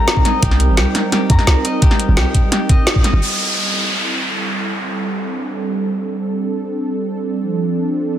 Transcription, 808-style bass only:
0.43 0.70 C2 loud
0.69 0.79 G1 medium
0.77 0.85 C2 medium
1.30 1.38 F2 medium
1.47 1.55 C2 medium
2.08 2.19 G1 medium
2.17 2.25 C2 medium
3.13 3.21 G1 loud

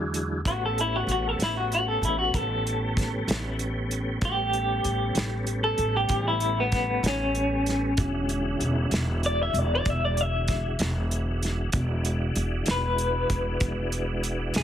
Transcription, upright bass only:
0.00 0.41 E2 medium
0.45 1.04 A1 medium
1.07 1.36 A1 medium
1.39 1.98 A1 medium
2.02 2.31 A1 medium
2.34 3.24 A1 medium
3.27 4.18 A1 medium
4.21 4.80 A1 medium
4.85 5.13 A1 medium
5.15 5.74 A1 medium
5.78 6.07 A1 medium
6.09 7.00 A1 medium
7.03 7.94 A1 medium
7.97 8.56 E1 medium
8.60 8.89 E1 medium
8.91 9.50 E1 medium
9.53 9.83 E1 medium
9.86 10.76 E1 medium
10.80 11.70 E1 medium
11.73 12.32 E1 medium
12.36 12.65 E1 medium
12.67 13.26 E1 medium
13.30 13.59 E1 medium
13.61 14.51 E1 medium
14.55 14.63 E1 medium

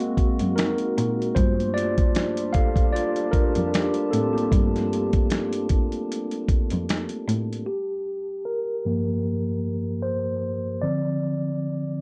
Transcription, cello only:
0.41 0.55 F#2 medium
0.98 1.16 A#2 medium
1.36 2.73 G2 medium
3.56 3.70 F2 medium
4.13 4.31 A2 medium
4.52 5.88 G2 loud
6.72 6.86 F2 medium
7.28 7.47 A2 medium

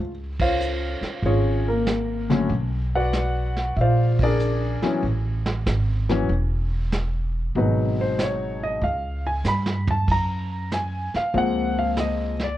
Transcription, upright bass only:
0.00 0.99 C#2 medium
1.01 muted upright bass stroke soft
1.23 2.46 G#1 medium
2.49 3.72 B1 medium
3.76 4.78 A#1 medium
4.83 muted upright bass stroke soft
5.02 5.62 A1 medium
5.66 6.25 G#1 medium
6.29 7.52 E1 medium
7.55 8.78 G#1 medium
8.82 9.41 C#2 medium
9.45 10.04 G2 medium
10.08 11.10 F#2 medium
11.14 muted upright bass stroke soft
11.34 12.57 C#2 medium

